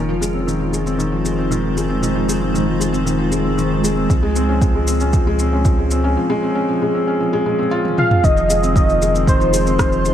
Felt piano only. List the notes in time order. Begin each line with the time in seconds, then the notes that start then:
0.09 F3
0.21 G#3
0.34 C4
0.47 D#3
0.60 F3
0.72 G#3
0.86 C4
0.98 D#3
1.12 F3
1.25 G#3
1.38 C4
1.51 D#3
1.63 F3
1.77 G#3
1.90 C4
2.02 D#3
2.15 F3
2.28 G#3
2.41 C4
2.54 D#3
2.66 F3
2.80 G#3
2.92 C4
3.05 D#3
3.19 F3
3.31 G#3
3.44 C4
3.57 D#3
3.71 F3
3.84 G#3
3.96 C4
4.10 F3
4.23 G#3
4.36 C4
4.49 C#4
4.62 F3
4.75 G#3
4.88 C4
5.01 C#4
5.14 F3
5.27 G#3
5.40 C4
5.53 C#4
5.66 F3
5.79 G#3
5.92 C4
6.04 C#4
6.17 F3
6.30 G#3
6.43 C4
6.55 C#4
6.68 F3
6.82 G#3
6.94 C4
7.08 C#4
7.20 F3
7.33 G#3
7.46 G#3
7.59 C4
7.71 F4
7.84 F3
7.97 F3
8.10 F3
8.23 D#3
8.37 F3
8.50 G#3
8.63 C4
8.76 D#3
8.89 F3
9.02 G#3
9.14 C4
9.27 D#3
9.40 F3
9.52 G#3
9.66 C4
9.79 D#3
9.92 F3
10.05 G#3